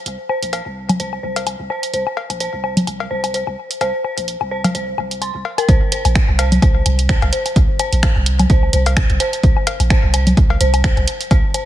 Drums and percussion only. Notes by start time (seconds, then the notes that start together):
0.06 closed hi-hat
0.29 low woodblock
0.43 closed hi-hat
0.53 closed hi-hat, cowbell, low woodblock
0.89 closed hi-hat, low conga, low woodblock
1.00 closed hi-hat
1.13 low woodblock
1.36 closed hi-hat, cowbell
1.47 closed hi-hat, low woodblock
1.70 low woodblock
1.83 closed hi-hat
1.94 closed hi-hat
2.07 low woodblock
2.17 cowbell
2.30 closed hi-hat, low woodblock
2.40 closed hi-hat
2.64 low woodblock
2.77 closed hi-hat, low conga
2.87 closed hi-hat, low woodblock
3.00 cowbell
3.24 closed hi-hat, low woodblock
3.34 closed hi-hat
3.47 low woodblock
3.71 closed hi-hat
3.81 closed hi-hat, cowbell, low woodblock
4.04 low woodblock
4.18 closed hi-hat
4.28 closed hi-hat
4.41 low woodblock
4.64 closed hi-hat, cowbell, low conga, low woodblock
4.75 closed hi-hat
4.98 low woodblock
5.11 closed hi-hat
5.22 closed hi-hat, low woodblock
5.45 cowbell
5.58 closed hi-hat, low woodblock
5.69 kick, closed hi-hat, low woodblock
5.92 closed hi-hat
6.05 closed hi-hat, low woodblock
6.15 finger snap, kick, closed hi-hat
6.29 low woodblock
6.39 closed hi-hat, cowbell
6.52 closed hi-hat, low conga
6.62 kick, closed hi-hat, low woodblock
6.86 closed hi-hat, low woodblock
6.99 closed hi-hat
7.09 finger snap, kick, closed hi-hat
7.22 closed hi-hat, cowbell, low woodblock
7.33 closed hi-hat
7.46 closed hi-hat, low woodblock
7.56 kick, closed hi-hat
7.79 closed hi-hat, low woodblock
7.93 closed hi-hat
8.03 finger snap, kick, closed hi-hat, cowbell, low woodblock
8.26 closed hi-hat
8.39 closed hi-hat, low conga, low woodblock
8.50 kick, closed hi-hat
8.63 low woodblock
8.73 closed hi-hat
8.86 closed hi-hat, cowbell
8.97 finger snap, kick, closed hi-hat, low woodblock
9.10 closed hi-hat
9.20 closed hi-hat, low woodblock
9.33 closed hi-hat
9.43 kick, closed hi-hat
9.57 low woodblock
9.67 closed hi-hat, cowbell
9.80 closed hi-hat, low woodblock
9.90 finger snap, kick, closed hi-hat
10.14 closed hi-hat, low woodblock
10.27 closed hi-hat, low conga
10.37 kick, closed hi-hat, low woodblock
10.50 cowbell
10.61 closed hi-hat
10.74 closed hi-hat, low woodblock
10.84 finger snap, kick, closed hi-hat
10.97 closed hi-hat, low woodblock
11.08 closed hi-hat
11.21 closed hi-hat
11.31 kick, closed hi-hat, cowbell, low woodblock
11.54 closed hi-hat, low woodblock